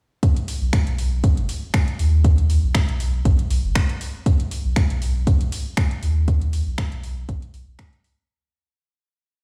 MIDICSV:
0, 0, Header, 1, 3, 480
1, 0, Start_track
1, 0, Key_signature, 5, "major"
1, 0, Tempo, 504202
1, 217, Time_signature, 4, 2, 24, 8
1, 8982, End_track
2, 0, Start_track
2, 0, Title_t, "Sub bass"
2, 0, Program_c, 0, 38
2, 587, Note_on_c, 0, 35, 96
2, 679, Note_off_c, 0, 35, 0
2, 828, Note_on_c, 0, 35, 98
2, 1307, Note_on_c, 0, 30, 103
2, 1322, Note_off_c, 0, 35, 0
2, 1400, Note_off_c, 0, 30, 0
2, 1897, Note_on_c, 0, 39, 105
2, 2473, Note_off_c, 0, 39, 0
2, 2507, Note_on_c, 0, 35, 96
2, 2599, Note_off_c, 0, 35, 0
2, 2746, Note_on_c, 0, 35, 100
2, 3068, Note_off_c, 0, 35, 0
2, 3097, Note_on_c, 0, 35, 94
2, 3301, Note_off_c, 0, 35, 0
2, 3337, Note_on_c, 0, 35, 97
2, 3446, Note_off_c, 0, 35, 0
2, 3467, Note_on_c, 0, 30, 98
2, 3559, Note_off_c, 0, 30, 0
2, 4426, Note_on_c, 0, 35, 95
2, 4519, Note_off_c, 0, 35, 0
2, 4667, Note_on_c, 0, 35, 101
2, 5113, Note_off_c, 0, 35, 0
2, 5147, Note_on_c, 0, 35, 99
2, 5240, Note_off_c, 0, 35, 0
2, 5737, Note_on_c, 0, 39, 104
2, 6313, Note_off_c, 0, 39, 0
2, 6346, Note_on_c, 0, 35, 101
2, 6439, Note_off_c, 0, 35, 0
2, 6587, Note_on_c, 0, 35, 98
2, 6909, Note_off_c, 0, 35, 0
2, 6937, Note_on_c, 0, 35, 98
2, 7141, Note_off_c, 0, 35, 0
2, 7177, Note_on_c, 0, 35, 98
2, 7286, Note_off_c, 0, 35, 0
2, 7307, Note_on_c, 0, 35, 99
2, 7399, Note_off_c, 0, 35, 0
2, 8982, End_track
3, 0, Start_track
3, 0, Title_t, "Drums"
3, 218, Note_on_c, 9, 36, 112
3, 218, Note_on_c, 9, 42, 75
3, 313, Note_off_c, 9, 36, 0
3, 313, Note_off_c, 9, 42, 0
3, 347, Note_on_c, 9, 42, 50
3, 442, Note_off_c, 9, 42, 0
3, 458, Note_on_c, 9, 46, 94
3, 553, Note_off_c, 9, 46, 0
3, 695, Note_on_c, 9, 26, 117
3, 698, Note_on_c, 9, 36, 108
3, 698, Note_on_c, 9, 42, 79
3, 790, Note_off_c, 9, 26, 0
3, 793, Note_off_c, 9, 36, 0
3, 793, Note_off_c, 9, 42, 0
3, 827, Note_on_c, 9, 42, 52
3, 922, Note_off_c, 9, 42, 0
3, 937, Note_on_c, 9, 46, 83
3, 1033, Note_off_c, 9, 46, 0
3, 1177, Note_on_c, 9, 42, 81
3, 1178, Note_on_c, 9, 36, 112
3, 1273, Note_off_c, 9, 36, 0
3, 1273, Note_off_c, 9, 42, 0
3, 1307, Note_on_c, 9, 42, 52
3, 1403, Note_off_c, 9, 42, 0
3, 1418, Note_on_c, 9, 46, 95
3, 1513, Note_off_c, 9, 46, 0
3, 1655, Note_on_c, 9, 26, 115
3, 1658, Note_on_c, 9, 36, 118
3, 1658, Note_on_c, 9, 42, 75
3, 1750, Note_off_c, 9, 26, 0
3, 1753, Note_off_c, 9, 36, 0
3, 1753, Note_off_c, 9, 42, 0
3, 1787, Note_on_c, 9, 42, 51
3, 1882, Note_off_c, 9, 42, 0
3, 1897, Note_on_c, 9, 46, 85
3, 1993, Note_off_c, 9, 46, 0
3, 2137, Note_on_c, 9, 36, 122
3, 2137, Note_on_c, 9, 42, 74
3, 2232, Note_off_c, 9, 36, 0
3, 2232, Note_off_c, 9, 42, 0
3, 2267, Note_on_c, 9, 42, 48
3, 2362, Note_off_c, 9, 42, 0
3, 2377, Note_on_c, 9, 46, 98
3, 2472, Note_off_c, 9, 46, 0
3, 2614, Note_on_c, 9, 26, 118
3, 2617, Note_on_c, 9, 36, 120
3, 2617, Note_on_c, 9, 42, 74
3, 2709, Note_off_c, 9, 26, 0
3, 2712, Note_off_c, 9, 36, 0
3, 2712, Note_off_c, 9, 42, 0
3, 2747, Note_on_c, 9, 42, 48
3, 2842, Note_off_c, 9, 42, 0
3, 2857, Note_on_c, 9, 46, 90
3, 2952, Note_off_c, 9, 46, 0
3, 3097, Note_on_c, 9, 36, 118
3, 3097, Note_on_c, 9, 42, 77
3, 3192, Note_off_c, 9, 36, 0
3, 3192, Note_off_c, 9, 42, 0
3, 3227, Note_on_c, 9, 42, 50
3, 3322, Note_off_c, 9, 42, 0
3, 3337, Note_on_c, 9, 46, 103
3, 3432, Note_off_c, 9, 46, 0
3, 3574, Note_on_c, 9, 26, 123
3, 3577, Note_on_c, 9, 36, 123
3, 3577, Note_on_c, 9, 42, 73
3, 3669, Note_off_c, 9, 26, 0
3, 3672, Note_off_c, 9, 36, 0
3, 3672, Note_off_c, 9, 42, 0
3, 3706, Note_on_c, 9, 42, 51
3, 3802, Note_off_c, 9, 42, 0
3, 3817, Note_on_c, 9, 46, 89
3, 3912, Note_off_c, 9, 46, 0
3, 4057, Note_on_c, 9, 36, 121
3, 4057, Note_on_c, 9, 42, 76
3, 4152, Note_off_c, 9, 36, 0
3, 4152, Note_off_c, 9, 42, 0
3, 4187, Note_on_c, 9, 42, 49
3, 4282, Note_off_c, 9, 42, 0
3, 4297, Note_on_c, 9, 46, 103
3, 4392, Note_off_c, 9, 46, 0
3, 4534, Note_on_c, 9, 26, 117
3, 4537, Note_on_c, 9, 36, 121
3, 4537, Note_on_c, 9, 42, 72
3, 4629, Note_off_c, 9, 26, 0
3, 4632, Note_off_c, 9, 36, 0
3, 4632, Note_off_c, 9, 42, 0
3, 4667, Note_on_c, 9, 42, 50
3, 4762, Note_off_c, 9, 42, 0
3, 4777, Note_on_c, 9, 46, 88
3, 4872, Note_off_c, 9, 46, 0
3, 5017, Note_on_c, 9, 36, 116
3, 5017, Note_on_c, 9, 42, 76
3, 5112, Note_off_c, 9, 42, 0
3, 5113, Note_off_c, 9, 36, 0
3, 5147, Note_on_c, 9, 42, 51
3, 5242, Note_off_c, 9, 42, 0
3, 5257, Note_on_c, 9, 46, 105
3, 5353, Note_off_c, 9, 46, 0
3, 5495, Note_on_c, 9, 26, 115
3, 5498, Note_on_c, 9, 36, 123
3, 5498, Note_on_c, 9, 42, 74
3, 5590, Note_off_c, 9, 26, 0
3, 5593, Note_off_c, 9, 36, 0
3, 5593, Note_off_c, 9, 42, 0
3, 5627, Note_on_c, 9, 42, 49
3, 5722, Note_off_c, 9, 42, 0
3, 5737, Note_on_c, 9, 46, 88
3, 5832, Note_off_c, 9, 46, 0
3, 5977, Note_on_c, 9, 42, 71
3, 5978, Note_on_c, 9, 36, 119
3, 6072, Note_off_c, 9, 42, 0
3, 6073, Note_off_c, 9, 36, 0
3, 6107, Note_on_c, 9, 42, 48
3, 6202, Note_off_c, 9, 42, 0
3, 6217, Note_on_c, 9, 46, 99
3, 6313, Note_off_c, 9, 46, 0
3, 6454, Note_on_c, 9, 26, 119
3, 6457, Note_on_c, 9, 36, 121
3, 6457, Note_on_c, 9, 42, 74
3, 6550, Note_off_c, 9, 26, 0
3, 6553, Note_off_c, 9, 36, 0
3, 6553, Note_off_c, 9, 42, 0
3, 6587, Note_on_c, 9, 42, 49
3, 6682, Note_off_c, 9, 42, 0
3, 6697, Note_on_c, 9, 46, 90
3, 6792, Note_off_c, 9, 46, 0
3, 6937, Note_on_c, 9, 36, 124
3, 6937, Note_on_c, 9, 42, 76
3, 7033, Note_off_c, 9, 36, 0
3, 7033, Note_off_c, 9, 42, 0
3, 7067, Note_on_c, 9, 42, 49
3, 7162, Note_off_c, 9, 42, 0
3, 7177, Note_on_c, 9, 46, 109
3, 7272, Note_off_c, 9, 46, 0
3, 7414, Note_on_c, 9, 26, 108
3, 7417, Note_on_c, 9, 36, 126
3, 7417, Note_on_c, 9, 42, 73
3, 7509, Note_off_c, 9, 26, 0
3, 7512, Note_off_c, 9, 36, 0
3, 7512, Note_off_c, 9, 42, 0
3, 7547, Note_on_c, 9, 42, 48
3, 7642, Note_off_c, 9, 42, 0
3, 7657, Note_on_c, 9, 46, 91
3, 7752, Note_off_c, 9, 46, 0
3, 8982, End_track
0, 0, End_of_file